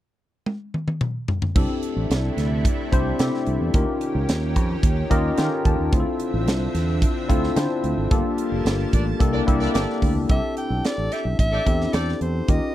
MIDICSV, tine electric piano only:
0, 0, Header, 1, 2, 480
1, 0, Start_track
1, 0, Key_signature, 0, "major"
1, 0, Tempo, 546448
1, 1368, Time_signature, 4, 2, 24, 8
1, 11199, End_track
2, 0, Start_track
2, 0, Title_t, "Tine electric piano"
2, 0, Program_c, 0, 4
2, 1365, Note_on_c, 0, 60, 73
2, 1367, Note_on_c, 0, 62, 68
2, 1370, Note_on_c, 0, 64, 64
2, 1372, Note_on_c, 0, 67, 65
2, 1376, Note_on_c, 0, 69, 92
2, 1521, Control_c, 0, 64, 127
2, 2140, Note_off_c, 0, 60, 0
2, 2141, Note_off_c, 0, 62, 0
2, 2143, Note_off_c, 0, 64, 0
2, 2143, Note_off_c, 0, 67, 0
2, 2145, Note_off_c, 0, 69, 0
2, 2564, Note_on_c, 0, 60, 84
2, 2566, Note_on_c, 0, 62, 82
2, 2569, Note_on_c, 0, 64, 85
2, 2572, Note_on_c, 0, 67, 74
2, 2574, Note_on_c, 0, 72, 93
2, 2759, Note_off_c, 0, 60, 0
2, 2760, Note_off_c, 0, 62, 0
2, 2761, Note_off_c, 0, 64, 0
2, 2763, Note_off_c, 0, 67, 0
2, 2764, Note_off_c, 0, 72, 0
2, 2802, Note_on_c, 0, 60, 72
2, 2804, Note_on_c, 0, 62, 57
2, 2806, Note_on_c, 0, 64, 66
2, 2808, Note_on_c, 0, 67, 64
2, 2811, Note_on_c, 0, 69, 75
2, 3191, Note_off_c, 0, 60, 0
2, 3192, Note_off_c, 0, 62, 0
2, 3193, Note_off_c, 0, 64, 0
2, 3194, Note_off_c, 0, 67, 0
2, 3196, Note_off_c, 0, 69, 0
2, 3282, Note_on_c, 0, 61, 70
2, 3285, Note_on_c, 0, 63, 70
2, 3288, Note_on_c, 0, 65, 66
2, 3289, Note_on_c, 0, 67, 67
2, 3293, Note_on_c, 0, 70, 77
2, 3296, Control_c, 0, 64, 0
2, 3434, Control_c, 0, 64, 127
2, 4058, Note_off_c, 0, 61, 0
2, 4059, Note_off_c, 0, 63, 0
2, 4061, Note_off_c, 0, 65, 0
2, 4061, Note_off_c, 0, 67, 0
2, 4064, Note_off_c, 0, 70, 0
2, 4479, Note_on_c, 0, 61, 83
2, 4482, Note_on_c, 0, 63, 76
2, 4484, Note_on_c, 0, 65, 82
2, 4485, Note_on_c, 0, 75, 73
2, 4488, Note_on_c, 0, 67, 78
2, 4490, Note_on_c, 0, 70, 107
2, 4676, Note_off_c, 0, 61, 0
2, 4678, Note_off_c, 0, 63, 0
2, 4678, Note_off_c, 0, 65, 0
2, 4680, Note_off_c, 0, 67, 0
2, 4681, Note_off_c, 0, 70, 0
2, 4709, Note_off_c, 0, 75, 0
2, 4720, Note_on_c, 0, 61, 72
2, 4723, Note_on_c, 0, 63, 62
2, 4725, Note_on_c, 0, 79, 70
2, 4726, Note_on_c, 0, 65, 68
2, 4729, Note_on_c, 0, 67, 64
2, 4730, Note_on_c, 0, 69, 64
2, 4785, Note_off_c, 0, 69, 0
2, 4789, Note_on_c, 0, 70, 79
2, 4948, Note_off_c, 0, 79, 0
2, 4967, Note_on_c, 0, 81, 70
2, 5109, Note_off_c, 0, 61, 0
2, 5111, Note_off_c, 0, 63, 0
2, 5113, Note_off_c, 0, 65, 0
2, 5114, Note_off_c, 0, 67, 0
2, 5144, Note_off_c, 0, 70, 0
2, 5190, Note_off_c, 0, 81, 0
2, 5203, Note_on_c, 0, 60, 84
2, 5203, Note_on_c, 0, 62, 75
2, 5206, Note_on_c, 0, 64, 69
2, 5210, Note_on_c, 0, 65, 64
2, 5212, Note_on_c, 0, 68, 63
2, 5217, Control_c, 0, 64, 0
2, 5266, Note_off_c, 0, 68, 0
2, 5269, Note_on_c, 0, 69, 85
2, 5383, Control_c, 0, 64, 127
2, 5978, Note_off_c, 0, 60, 0
2, 5978, Note_off_c, 0, 62, 0
2, 5980, Note_off_c, 0, 64, 0
2, 5981, Note_off_c, 0, 65, 0
2, 6011, Note_off_c, 0, 69, 0
2, 6400, Note_on_c, 0, 60, 89
2, 6401, Note_on_c, 0, 62, 88
2, 6403, Note_on_c, 0, 64, 83
2, 6406, Note_on_c, 0, 65, 84
2, 6410, Note_on_c, 0, 69, 94
2, 6596, Note_off_c, 0, 60, 0
2, 6597, Note_off_c, 0, 62, 0
2, 6597, Note_off_c, 0, 64, 0
2, 6599, Note_off_c, 0, 65, 0
2, 6601, Note_off_c, 0, 69, 0
2, 6640, Note_on_c, 0, 60, 71
2, 6643, Note_on_c, 0, 62, 66
2, 6647, Note_on_c, 0, 64, 65
2, 6649, Note_on_c, 0, 65, 66
2, 6650, Note_on_c, 0, 72, 78
2, 7029, Note_off_c, 0, 60, 0
2, 7031, Note_off_c, 0, 62, 0
2, 7033, Note_off_c, 0, 64, 0
2, 7034, Note_off_c, 0, 65, 0
2, 7035, Note_off_c, 0, 72, 0
2, 7120, Note_on_c, 0, 58, 77
2, 7123, Note_on_c, 0, 62, 67
2, 7126, Note_on_c, 0, 65, 64
2, 7127, Note_on_c, 0, 67, 68
2, 7130, Note_on_c, 0, 69, 84
2, 7137, Control_c, 0, 64, 0
2, 7287, Control_c, 0, 64, 127
2, 7897, Note_off_c, 0, 58, 0
2, 7898, Note_off_c, 0, 62, 0
2, 7900, Note_off_c, 0, 65, 0
2, 7900, Note_off_c, 0, 67, 0
2, 7902, Note_off_c, 0, 69, 0
2, 8078, Note_on_c, 0, 58, 88
2, 8081, Note_on_c, 0, 62, 80
2, 8085, Note_on_c, 0, 64, 77
2, 8088, Note_on_c, 0, 67, 75
2, 8090, Note_on_c, 0, 69, 92
2, 8097, Control_c, 0, 64, 0
2, 8269, Control_c, 0, 64, 127
2, 8275, Note_off_c, 0, 58, 0
2, 8277, Note_off_c, 0, 62, 0
2, 8279, Note_off_c, 0, 64, 0
2, 8280, Note_off_c, 0, 67, 0
2, 8282, Note_off_c, 0, 69, 0
2, 8316, Note_on_c, 0, 58, 83
2, 8317, Note_on_c, 0, 62, 85
2, 8321, Note_on_c, 0, 64, 85
2, 8322, Note_on_c, 0, 67, 77
2, 8326, Note_on_c, 0, 69, 88
2, 8515, Note_off_c, 0, 58, 0
2, 8515, Note_off_c, 0, 62, 0
2, 8517, Note_off_c, 0, 64, 0
2, 8518, Note_off_c, 0, 67, 0
2, 8520, Note_off_c, 0, 69, 0
2, 8555, Note_on_c, 0, 58, 68
2, 8560, Note_on_c, 0, 62, 69
2, 8561, Note_on_c, 0, 64, 60
2, 8564, Note_on_c, 0, 67, 69
2, 8566, Note_on_c, 0, 69, 76
2, 8948, Note_off_c, 0, 58, 0
2, 8950, Note_off_c, 0, 62, 0
2, 8951, Note_off_c, 0, 64, 0
2, 8952, Note_off_c, 0, 67, 0
2, 8953, Note_off_c, 0, 69, 0
2, 9038, Note_on_c, 0, 60, 65
2, 9040, Note_on_c, 0, 62, 53
2, 9043, Note_on_c, 0, 64, 55
2, 9045, Note_on_c, 0, 67, 60
2, 9047, Note_on_c, 0, 69, 74
2, 9056, Control_c, 0, 64, 0
2, 9208, Control_c, 0, 64, 127
2, 9817, Note_off_c, 0, 60, 0
2, 9819, Note_off_c, 0, 62, 0
2, 9820, Note_off_c, 0, 64, 0
2, 9821, Note_off_c, 0, 67, 0
2, 9822, Note_off_c, 0, 69, 0
2, 10240, Note_on_c, 0, 60, 78
2, 10242, Note_on_c, 0, 62, 70
2, 10245, Note_on_c, 0, 64, 74
2, 10247, Note_on_c, 0, 67, 70
2, 10250, Note_on_c, 0, 69, 82
2, 10826, Note_off_c, 0, 60, 0
2, 10827, Note_off_c, 0, 62, 0
2, 10829, Note_off_c, 0, 64, 0
2, 10830, Note_off_c, 0, 67, 0
2, 10831, Note_off_c, 0, 69, 0
2, 10962, Note_on_c, 0, 61, 65
2, 10963, Note_on_c, 0, 63, 62
2, 10966, Note_on_c, 0, 65, 57
2, 10970, Note_on_c, 0, 67, 62
2, 10973, Note_on_c, 0, 70, 69
2, 10981, Control_c, 0, 64, 0
2, 11141, Control_c, 0, 64, 127
2, 11199, Note_off_c, 0, 61, 0
2, 11199, Note_off_c, 0, 63, 0
2, 11199, Note_off_c, 0, 65, 0
2, 11199, Note_off_c, 0, 67, 0
2, 11199, Note_off_c, 0, 70, 0
2, 11199, End_track
0, 0, End_of_file